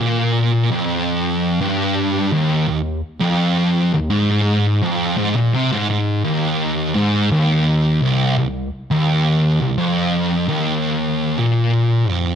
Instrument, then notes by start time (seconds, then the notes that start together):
distorted electric guitar
0.00 A#2
0.72 F2
1.61 G2
2.32 D#2
2.68 D#2
3.21 F2
3.94 D#2
4.10 G#2
4.82 F2
5.17 G#2
5.35 A#2
5.53 C3
5.72 G#2
5.89 G#2
6.24 D#2
6.95 G#2
7.31 D#2
8.02 C2
8.38 C2
8.91 D#2
9.61 C2
9.78 F2
10.49 D#2
11.39 A#2
12.10 F2